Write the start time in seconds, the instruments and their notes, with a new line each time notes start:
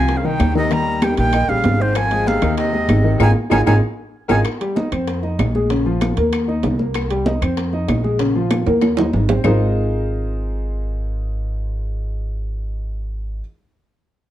Already playing: upright bass C2, grand piano C3 C4, baritone saxophone F3, flute G#5
0.08 high bongo, high conga, high timbale
0.17 baritone saxophone C#3, flute F5
0.24 baritone saxophone D#3, grand piano D#3 D#4, flute G5, high bongo, high conga
0.40 upright bass D#2, high bongo, low bongo, high conga, high timbale, low timbale, claves
0.55 baritone saxophone C3, grand piano D#3 D#4, flute D#5, high conga
0.71 grand piano D#3 D#4, baritone saxophone G3, flute A#5, high bongo, high conga, high timbale
0.86 high conga
1.02 baritone saxophone D#3, grand piano G3 G4, flute G5, high bongo, high conga, high timbale, low timbale, claves
1.17 upright bass A#1, baritone saxophone D#3, flute G5, high bongo, high conga, high timbale
1.33 grand piano D#4 D#5, high bongo, high conga, high timbale, claves
1.49 upright bass A#1, baritone saxophone C#3, grand piano G3 G4, flute F5, high bongo, high conga
1.64 upright bass G#1, high bongo, low bongo, high conga, high timbale, low timbale
1.80 baritone saxophone G#2, grand piano C4 C5, flute C5
1.95 baritone saxophone F3, flute G#5, high bongo, high conga, high timbale, claves
2.11 grand piano G#3 G#4, high conga, high timbale
2.26 baritone saxophone C3, flute F5, high bongo, high conga, low timbale
2.42 upright bass D#2, grand piano D#3 D#4, high bongo, high timbale, claves
2.58 baritone saxophone C3, flute D#5, high bongo, high conga, high timbale
2.73 grand piano G#3 G#4, high bongo, high conga
2.89 upright bass G#1, high bongo, low bongo, high conga, high timbale, low timbale, claves
3.04 grand piano D#3 D#4
3.20 upright bass G#1, baritone saxophone D#3, grand piano D#4 F4 G#4, flute G#5, high bongo, high conga, high timbale, claves
3.50 upright bass G#1, baritone saxophone D#3, grand piano D#4 F4 G#4, flute G#5, high bongo, high conga, high timbale, claves
3.66 upright bass G#1, baritone saxophone D#3, grand piano D#4 F4 G#4, flute G#5, high bongo, high conga, high timbale, claves
4.28 upright bass G#1, baritone saxophone D#3, grand piano D#4 F4 G#4, flute G#5, high bongo, high conga, high timbale, claves
4.44 high bongo, high conga, high timbale, claves
4.61 grand piano G3 G4, high conga, high timbale
4.76 grand piano D#4 D#5, high bongo, high conga, low timbale
4.92 upright bass F2, grand piano C4 C5, high bongo, high timbale, claves
5.08 high bongo, high conga, high timbale
5.23 grand piano D#4 D#5, high bongo, high conga
5.39 upright bass A#1, high bongo, low bongo, high conga, high timbale, low timbale, claves
5.55 grand piano G#3 G#4, high conga
5.70 grand piano C#3 C#4, high bongo, high conga, high timbale
5.86 grand piano F3 F4, high conga
6.01 high bongo, high conga, high timbale, low timbale, claves
6.17 upright bass D#2, grand piano A#3 A#4, high bongo, high conga, high timbale
6.33 high bongo, high conga, high timbale, claves
6.48 grand piano D#4 D#5, high bongo, high conga
6.63 upright bass C2, high bongo, low bongo, high conga, high timbale, low timbale
6.79 grand piano A#3 A#4, high conga
6.94 high bongo, high conga, high timbale, claves
7.11 grand piano G3 G4, high conga, high timbale
7.26 grand piano D#4 D#5, high bongo, high conga, low timbale
7.42 upright bass F2, grand piano C4 C5, high bongo, high timbale, claves
7.57 high bongo, high conga, high timbale
7.73 grand piano D#4 D#5, high bongo, high conga
7.88 upright bass A#1, high bongo, low bongo, high conga, high timbale, low timbale, claves
8.04 grand piano G#3 G#4, high conga
8.19 grand piano C#3 C#4, high bongo, high conga, high timbale
8.36 grand piano F3 F4, high conga
8.51 high bongo, high conga, high timbale, low timbale, claves
8.66 upright bass D#2, grand piano A#3 A#4, high bongo, high conga, high timbale
8.82 high bongo, high conga, high timbale, claves
8.97 grand piano D#4 D#5, high bongo, low conga, high timbale
9.13 upright bass G#1, high bongo, low bongo, low conga, low timbale
9.29 grand piano C4 C5, low conga, low timbale
9.44 upright bass G#1, grand piano G#3 D#4 F4 G#4 A#4 C5, low bongo, low conga, low timbale, claves